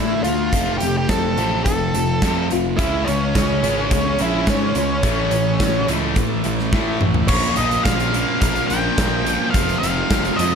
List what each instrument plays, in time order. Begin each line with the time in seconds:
Already playing: picked electric bass A2, distorted electric guitar D3 A3, steel-string acoustic guitar D3 A3 D4, lead electric guitar E4
0.24 picked electric bass D2, distorted electric guitar D3 A3, lead electric guitar F4, steel-string acoustic guitar F4, closed hi-hat
0.52 picked electric bass F1, steel-string acoustic guitar F2, distorted electric guitar F2 C3 F3 A3 C4, kick, closed hi-hat
0.78 picked electric bass F1, distorted electric guitar F2, steel-string acoustic guitar A3, lead electric guitar G4, closed hi-hat
0.82 distorted electric guitar C3 F3 A3
0.98 lead electric guitar G4
1.08 picked electric bass F1, distorted electric guitar F2 C3 F3 A3, steel-string acoustic guitar C4, lead electric guitar A4, kick, snare, closed hi-hat
1.38 picked electric bass A1, distorted electric guitar F2 C3 F3 A3 C4, steel-string acoustic guitar A3, closed hi-hat
1.64 picked electric bass F1, distorted electric guitar F2 C3 F3 A3, steel-string acoustic guitar C4, lead electric guitar A4, kick, closed hi-hat
1.94 picked electric bass F1, distorted electric guitar F2 C3 F3 A3, steel-string acoustic guitar F3, closed hi-hat
2.22 picked electric bass F2, distorted electric guitar F2 C3 F3 A3 C4, steel-string acoustic guitar A3, kick, snare, closed hi-hat
2.51 picked electric bass F1, distorted electric guitar F2 C3 F3 A3, steel-string acoustic guitar F4, closed hi-hat
2.77 picked electric bass C#2, distorted electric guitar C#3 G#3 C#4, lead electric guitar E4, kick, closed hi-hat
3.05 picked electric bass C#2, distorted electric guitar C#3 G#3, lead electric guitar C#4, closed hi-hat
3.35 picked electric bass C#2, distorted electric guitar C#3 G#3, kick, snare, closed hi-hat
3.63 picked electric bass G#1, distorted electric guitar C#3 G#3 C#4, closed hi-hat
3.91 picked electric bass C#2, distorted electric guitar C#3 G#3, lead electric guitar C#4, kick, closed hi-hat
4.19 picked electric bass A#1, distorted electric guitar C#3 G#3 C#4, lead electric guitar E4, closed hi-hat
4.47 picked electric bass G#2, distorted electric guitar C#3 G#3, lead electric guitar C#4, kick, snare, closed hi-hat
4.75 picked electric bass C#2, distorted electric guitar C#3 G#3, lead electric guitar C#4, closed hi-hat
5.03 picked electric bass A1, distorted electric guitar A2 E3 A3, kick, closed hi-hat
5.30 picked electric bass A1, distorted electric guitar A2 E3, closed hi-hat
5.60 picked electric bass A1, distorted electric guitar A2 E3, kick, snare, closed hi-hat
5.88 picked electric bass C#2, distorted electric guitar A2 E3 A3, closed hi-hat
6.16 picked electric bass A1, distorted electric guitar A2 E3, kick, closed hi-hat
6.44 picked electric bass A1, distorted electric guitar A2 E3, closed hi-hat
6.59 snare
6.73 picked electric bass A2, distorted electric guitar A2 E3 A3, kick, snare
7.01 picked electric bass A1, distorted electric guitar A2 E3, mid tom
7.14 floor tom
7.28 picked electric bass A#1, distorted electric guitar A#2 F3 A#3 C#4, lead electric guitar C#5, kick, crash
7.43 closed hi-hat
7.56 picked electric bass A#1, distorted electric guitar A#2 F3 A#3 C#4, lead electric guitar D#5, closed hi-hat
7.71 closed hi-hat
7.83 picked electric bass A#1, distorted electric guitar A#2 F3 A#3 C#4, lead electric guitar F5, kick, snare, closed hi-hat
8.00 closed hi-hat
8.13 distorted electric guitar A#2 F3 A#3 C#4, closed hi-hat
8.41 picked electric bass A#1, distorted electric guitar A#2 F3 A#3 C#4, lead electric guitar F5, kick, closed hi-hat
8.56 closed hi-hat
8.68 picked electric bass A#1, distorted electric guitar A#2 F3, lead electric guitar G5, closed hi-hat
8.72 distorted electric guitar A#3 C#4
8.98 picked electric bass A#1, distorted electric guitar A#2 F3 A#3 C#4, kick, snare, closed hi-hat
9.26 distorted electric guitar A#2 F3 A#3 C#4, closed hi-hat
9.51 picked electric bass F1, distorted electric guitar F2, lead electric guitar F5, kick, closed hi-hat
9.55 distorted electric guitar C3 F3 G#3 C4
9.69 closed hi-hat
9.80 picked electric bass F1, distorted electric guitar F2 C3, lead electric guitar F5, closed hi-hat
9.84 distorted electric guitar F3 G#3 C4
10.10 picked electric bass F1, distorted electric guitar F2 C3 F3 G#3 C4, kick, snare, closed hi-hat
10.25 closed hi-hat
10.36 distorted electric guitar F2 C3 F3 G#3 C4, picked electric bass F2, lead electric guitar D#5, closed hi-hat